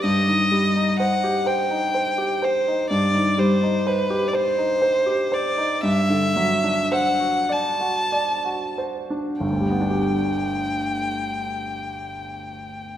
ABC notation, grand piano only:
X:1
M:6/8
L:1/16
Q:3/8=38
K:G
V:1 name="Grand piano"
G,, _E, G, _E c G c E c G c E | G,, _E, G, _E c G c E c G c E | G,, D, F, D c F d F d F c D | [G,,,D,,G,B,DG]12 |]